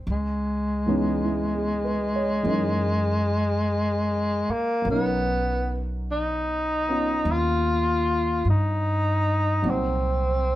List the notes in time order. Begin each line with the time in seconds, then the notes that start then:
0.07 C#2
0.11 G#3
0.86 E3 G#3 B3 C#4 D#4
1.24 E4
1.54 G#4
1.84 B4
2.16 C#5
2.43 F#2 E3 G#3 A#3 C#4
2.48 D#4
4.49 A#3, muted upright bass stroke
4.82 B1 F#3 A#4
4.87 B3 C#4
4.93 D#4
6.12 D#4
6.89 B3 C#4 D#4 F4
7.25 D#2
7.32 F4
8.45 G2
8.50 D#4
9.62 C2 A#2 F#3 C4 D#4
9.67 C4 F#4